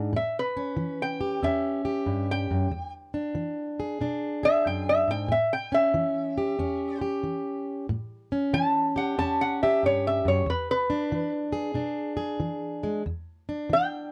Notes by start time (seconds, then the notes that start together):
Already playing: G#2 D4 G#4
0.13 A2 E5
0.39 B4
0.57 C#4
0.77 E3
1.02 G5
1.21 G4
1.43 E2 C#4 E5
1.85 G4
2.06 G2
2.31 G5
2.51 F#2
2.71 E2
3.14 D4
3.35 E3
3.80 G#4
4.01 B2 D4
4.43 G#4 E5
4.66 F#2 G5
4.89 E5
5.08 G#2 G5
5.28 A2 E5
5.53 G5
5.72 C#4 E5
5.94 E3
6.38 G4
6.59 E2 C#4
7.01 G4
7.23 E3
7.89 A2
8.32 C#4
8.53 E3 A5
8.96 G4 F#5
9.18 E2 C#4 A5
9.41 F#5
9.63 G4 E5
9.83 G2 C#5
10.07 E5
10.25 F#2 C#5
10.46 E2 B4
10.71 B4
10.90 D4
11.12 E3
11.53 G#4
11.74 B2 D4
12.17 G#4
12.40 E3
12.83 G#3
13.06 E2
13.49 D4
13.70 E3 G5